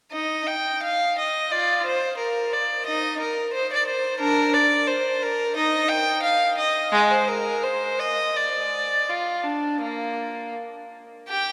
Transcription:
0.11 0.44 D#4 soft
0.11 0.45 D#5 medium
0.47 0.82 G5 medium
0.82 1.16 F5 medium
1.18 1.51 D#5 medium
1.51 1.83 F4 medium
1.51 1.85 D5 medium
1.86 2.18 C5 medium
2.17 2.51 A#4 medium
2.53 2.86 D5 medium
2.86 3.17 D#4 medium
2.86 3.18 D#5 medium
3.20 3.52 A#4 medium
3.53 3.69 C5 medium
3.73 3.87 D5 medium
3.87 4.19 C5 medium
4.19 4.50 D4 medium
4.19 4.52 A#4 medium
4.53 4.87 D5 medium
4.87 5.20 C5 medium
5.22 5.55 A#4 medium
5.55 5.87 D#4 medium
5.55 5.88 D#5 medium
5.88 6.23 G5 medium
6.22 6.57 F5 medium
6.57 6.92 D#5 medium
6.92 7.10 G#3 loud
7.10 7.28 C5 medium
7.28 7.64 A#4 medium
7.63 7.99 C5 medium
7.99 8.36 D#5 medium
8.36 9.08 D5 medium
9.09 9.45 F4 medium
9.43 9.81 D4 medium
9.81 10.53 A#3 medium
11.29 11.52 G4 medium
11.29 11.52 G5 medium

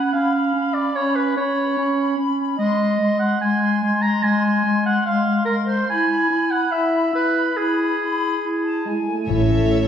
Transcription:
0.00 0.12 F#5 medium
0.00 0.14 B5 soft
0.13 0.50 C#4 soft
0.13 0.75 F5 medium
0.13 0.35 B5 soft
0.37 0.56 B5 soft
0.54 0.91 C#4 soft
0.54 0.76 B5 soft
0.74 0.97 D5 medium
0.74 0.95 B5 soft
0.96 1.33 C#4 medium
0.96 1.17 C#5 medium
0.96 1.16 B5 soft
1.16 1.36 B4 medium
1.16 1.37 B5 soft
1.37 1.73 C#4 soft
1.37 2.17 C#5 medium
1.37 1.58 B5 soft
1.59 1.76 B5 soft
1.77 2.13 C#4 medium
1.77 1.98 B5 soft
1.99 2.18 B5 soft
2.17 2.54 C#4 soft
2.17 2.38 B5 soft
2.39 2.60 B5 soft
2.58 2.95 G#3 medium
2.58 3.17 D#5 medium
2.58 2.79 C6 medium
2.81 2.99 C6 soft
3.00 3.37 G#3 soft
3.00 3.21 C6 soft
3.19 3.40 F#5 medium
3.19 3.42 C6 soft
3.41 3.78 G#3 medium
3.41 4.03 G#5 medium
3.41 3.61 C6 soft
3.62 3.82 C6 soft
3.83 4.19 G#3 medium
3.83 4.03 C6 soft
4.02 4.25 A#5 medium
4.02 4.22 C6 soft
4.23 4.60 G#3 medium
4.23 4.85 G#5 medium
4.23 4.43 C6 soft
4.45 4.63 C6 soft
4.64 5.01 G#3 medium
4.64 4.83 C6 soft
4.85 5.05 F#5 medium
4.85 5.05 C6 soft
5.06 5.42 G#3 medium
5.06 5.45 F5 medium
5.06 5.24 C6 soft
5.25 5.45 C6 soft
5.45 5.84 G#3 soft
5.45 5.55 A#4 medium
5.45 5.66 C6 soft
5.67 5.88 C5 medium
5.67 5.88 C6 soft
5.89 6.26 E4 medium
5.89 6.52 G#5 medium
5.89 6.08 B5 soft
6.09 6.28 B5 soft
6.29 6.67 E4 soft
6.29 6.50 B5 soft
6.51 6.73 F#5 medium
6.51 6.72 B5 soft
6.72 7.09 E4 medium
6.72 7.14 E5 medium
6.72 6.93 B5 soft
6.94 7.13 B5 soft
7.13 7.51 E4 soft
7.13 7.58 B4 medium
7.13 7.35 B5 soft
7.37 7.57 B5 soft
7.57 7.95 E4 medium
7.57 9.07 G#4 medium
7.57 7.79 B5 soft
7.80 7.99 B5 soft
8.00 8.38 E4 soft
8.00 8.36 B5 medium
8.43 8.80 E4 soft
8.65 8.86 A5 soft
8.84 8.94 G#3 soft
8.84 9.24 E4 soft
8.84 9.30 G#5 soft
9.07 9.29 A3 soft
9.28 9.88 A1 medium
9.28 9.88 A2 soft
9.28 9.88 E3 soft
9.28 9.88 C#4 soft
9.28 9.88 E4 medium
9.28 9.88 A4 soft
9.28 9.88 C#5 soft
9.28 9.88 E5 soft
9.50 9.88 A3 soft
9.72 9.88 C#5 soft

